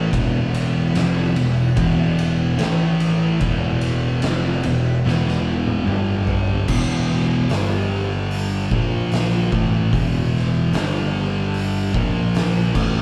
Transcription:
Already playing: distorted electric guitar A2 E3 A3, string machine A3 E4 B4
0.10 tine electric piano E1, distorted electric guitar E2 B2 E3, kick, ride
0.16 string machine B3 E4 F#5
0.54 ride
0.95 tine electric piano F1, distorted electric guitar F2 C3 F3, snare, ride
1.35 tine electric piano E1, distorted electric guitar E2 B2, ride
1.75 tine electric piano E1, distorted electric guitar E2 B2 E3, kick, ride
2.19 ride
2.57 tine electric piano A1, distorted electric guitar A2 E3 A3, string machine E4 B4, snare, ride
2.61 string machine A3
3.00 ride
3.40 tine electric piano E1, distorted electric guitar E2 B2 E3, string machine B3 E4 F#5, kick, ride
3.81 ride
4.22 tine electric piano F1, distorted electric guitar F2 C3 F3, snare, ride
4.63 tine electric piano E1, distorted electric guitar E2 B2, ride
5.04 tine electric piano E1, distorted electric guitar E2 B2 E3, snare
5.28 snare
5.66 high tom
5.86 tine electric piano G1, distorted electric guitar G2 D3 G3, string machine G3 D4 A4, mid tom
6.27 floor tom
6.48 floor tom
6.68 tine electric piano E1, distorted electric guitar E2 B2 E3, string machine E3 B3 F#4, kick, crash
7.11 snare
7.48 tine electric piano G1, distorted electric guitar G2 D3 G3, string machine G3 D4 A4, snare, open hi-hat
8.31 open hi-hat
8.70 tine electric piano A#1, distorted electric guitar A#2 F3 A#3, string machine A#3 F4 C5, kick
9.12 snare, open hi-hat
9.51 tine electric piano A1, distorted electric guitar A2 E3 A3, string machine E3 B3 F#4, kick
9.92 tine electric piano E1, distorted electric guitar E2 B2 E3, kick, open hi-hat
10.37 snare
10.73 tine electric piano G1, distorted electric guitar G2 D3 G3, string machine G3 D4 A4, snare, open hi-hat
11.54 open hi-hat
11.94 tine electric piano A#1, distorted electric guitar A#2 F3 A#3, string machine A#3 F4 C5, kick
12.35 snare, open hi-hat
12.75 tine electric piano A1, distorted electric guitar A2 E3 A3, string machine E3 B3 F#4, kick, crash

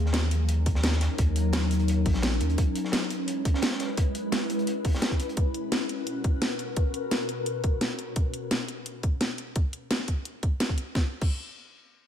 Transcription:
Already playing: sub bass D#2, ambient pad F#3 C#4 D#4 A#4
0.06 snare
0.13 snare, closed hi-hat
0.31 closed hi-hat
0.48 closed hi-hat
0.66 kick, closed hi-hat
0.75 snare
0.83 snare, closed hi-hat
0.92 snare
1.01 snare, closed hi-hat
1.18 sub bass D#2, kick, closed hi-hat
1.36 closed hi-hat
1.53 snare, closed hi-hat
1.71 closed hi-hat
1.79 closed hi-hat
1.88 closed hi-hat
2.06 sub bass A#1, kick, closed hi-hat, open hi-hat
2.14 snare
2.22 snare, closed hi-hat
2.40 sub bass D#2, closed hi-hat
2.50 closed hi-hat
2.58 ambient pad G#3 E4 B4, kick, closed hi-hat
2.75 closed hi-hat
2.85 snare
2.92 snare, closed hi-hat
3.10 closed hi-hat
3.28 closed hi-hat
3.45 kick, closed hi-hat
3.54 snare
3.62 snare, closed hi-hat
3.71 snare
3.79 snare, closed hi-hat
3.97 kick, closed hi-hat
4.15 closed hi-hat
4.32 snare, closed hi-hat
4.50 closed hi-hat
4.59 closed hi-hat
4.67 closed hi-hat
4.85 kick, closed hi-hat, open hi-hat
4.94 snare
5.02 snare, closed hi-hat
5.11 kick
5.20 closed hi-hat
5.29 closed hi-hat
5.37 ambient pad B2 F#4 A#4 B4, kick, closed hi-hat
5.54 closed hi-hat
5.72 snare, closed hi-hat
5.89 closed hi-hat
6.07 closed hi-hat
6.24 kick, closed hi-hat
6.42 snare, closed hi-hat
6.59 closed hi-hat
6.76 kick, closed hi-hat
6.94 closed hi-hat
7.11 snare, closed hi-hat
7.29 closed hi-hat
7.46 closed hi-hat
7.64 kick, closed hi-hat
7.81 snare, closed hi-hat
7.99 closed hi-hat
8.16 kick, closed hi-hat
8.34 closed hi-hat
8.51 snare, closed hi-hat
8.68 closed hi-hat
8.86 closed hi-hat
9.03 kick, closed hi-hat
9.21 snare, closed hi-hat
9.38 closed hi-hat
9.56 kick, closed hi-hat
9.73 closed hi-hat
9.91 snare, closed hi-hat
10.00 snare
10.08 kick, closed hi-hat
10.25 closed hi-hat
10.43 kick, closed hi-hat
10.60 snare, closed hi-hat
10.69 kick
10.78 closed hi-hat
10.95 kick, snare
11.21 kick, crash

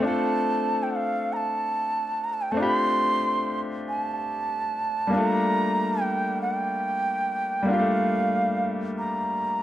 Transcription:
Already playing: grand piano A3
0.00 grand piano C4 D4
0.05 grand piano F4 A4, bansuri A5
0.83 bansuri G5
0.91 bansuri F#5
0.96 bansuri F5
1.33 bansuri A5 A#5
2.24 bansuri A#5
2.33 bansuri A5
2.42 bansuri G5
2.52 grand piano A3 C4, bansuri A5
2.57 grand piano D4 F4
2.61 grand piano G4, bansuri B5
2.75 bansuri C6
3.88 bansuri G#5
3.99 bansuri A5
5.07 grand piano G3 A#3
5.13 grand piano D4 F4, bansuri A#5
5.18 grand piano A3
6.01 bansuri G5
6.42 bansuri F#5
6.55 bansuri G5
7.63 grand piano G3 A#3
7.68 grand piano D4 F4, bansuri F#5
7.73 grand piano G4, bansuri F5
7.80 grand piano A3
8.98 bansuri A#5

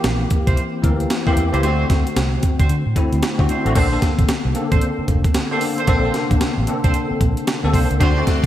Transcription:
Already playing: tine electric piano E3 A#3 C4 G4
0.04 fingered electric bass A#1, snare, closed hi-hat
0.30 kick, closed hi-hat
0.47 fingered electric bass C2, horn section C4 E4 A#4 C5, kick, closed hi-hat
0.57 closed hi-hat
0.82 fingered electric bass D2, tine electric piano E3 A#3 C4 A#4, kick, closed hi-hat
1.00 closed hi-hat
1.10 snare, closed hi-hat
1.26 tine electric piano E3 A#3 C4 G4, horn section C4 E4 A#4 C5, kick
1.37 fingered electric bass E2, closed hi-hat
1.52 fingered electric bass C#2, tine electric piano E3 A#3 C4 G4, horn section C4 E4 A#4 C5, closed hi-hat
1.62 fingered electric bass D2, tine electric piano D3 A3 C4 F#4, horn section C4 D4 F#4 C5, closed hi-hat
1.90 fingered electric bass D2, kick, snare, closed hi-hat
2.07 closed hi-hat
2.16 fingered electric bass C2, snare, closed hi-hat
2.43 kick, closed hi-hat
2.59 fingered electric bass D2, horn section C4 D4 F#4 C5, kick, closed hi-hat
2.69 fingered electric bass D3, closed hi-hat
2.86 fingered electric bass A2
2.95 tine electric piano D3 A3 C4 E4, kick, closed hi-hat
3.13 fingered electric bass D2, closed hi-hat
3.23 snare, closed hi-hat
3.38 tine electric piano D3 A3 C4 F#4, fingered electric bass D3, kick
3.49 horn section C4 D4 F#4 C5, closed hi-hat
3.65 fingered electric bass A1, tine electric piano D3 A3 C4 F#4, closed hi-hat
3.75 fingered electric bass A#1, tine electric piano D3 A#3 C4 A4, horn section C4 D4 A4 C5, kick, closed hi-hat, crash
3.91 tine electric piano D3 A#3 C4 A4
4.02 kick, snare, closed hi-hat
4.19 fingered electric bass A1, kick, closed hi-hat
4.29 muted fingered electric bass stroke, snare, closed hi-hat
4.45 fingered electric bass C2
4.54 tine electric piano C#3 A#3 C4 A4, closed hi-hat
4.61 tine electric piano D3
4.71 fingered electric bass A1, horn section C4 D4 A4 C5, kick, closed hi-hat
4.81 closed hi-hat
4.98 muted fingered electric bass stroke
5.08 fingered electric bass F1, kick, closed hi-hat
5.24 kick, closed hi-hat
5.34 snare, closed hi-hat
5.51 tine electric piano D3 A#3 C4 A4, horn section C4 D4 A4 C5
5.61 open hi-hat
5.77 horn section C4 D4 A4 C5, closed hi-hat
5.87 fingered electric bass A#1, tine electric piano D3 A#3 C4 A4, horn section C4 D4 A4 C5, kick, closed hi-hat
6.04 tine electric piano C3 A#3 C4 C5
6.10 tine electric piano D3, snare, closed hi-hat
6.31 fingered electric bass A#1, kick, closed hi-hat
6.41 snare, closed hi-hat
6.58 fingered electric bass A1
6.67 tine electric piano D3 A#3 C4 A4, closed hi-hat
6.84 fingered electric bass C2, horn section C4 D4 A4 C5, kick, closed hi-hat
6.94 closed hi-hat
7.11 muted fingered electric bass stroke
7.21 fingered electric bass A#1, kick, closed hi-hat
7.37 closed hi-hat
7.47 snare, closed hi-hat
7.63 fingered electric bass D2, tine electric piano D3 A#3 C4 A4
7.73 fingered electric bass C2, horn section C4 D4 A4 C5, kick, open hi-hat
7.91 fingered electric bass C#2, closed hi-hat
8.00 fingered electric bass D2, tine electric piano D3 A3 C4 F#4, horn section C4 D4 F#4 C5, string section F#4 D5 C6, kick, closed hi-hat
8.16 tine electric piano D3 A3 C4 F#4
8.27 kick, snare, closed hi-hat

